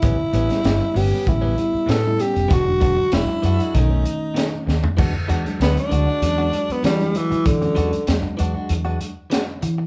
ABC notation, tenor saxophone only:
X:1
M:4/4
L:1/16
Q:"Swing 16ths" 1/4=97
K:Emix
V:1 name="Tenor saxophone"
E6 =G2 E4 A2 G2 | F4 E4 ^D6 z2 | z4 B, D6 B, =G,2 E,2 | D,4 z12 |]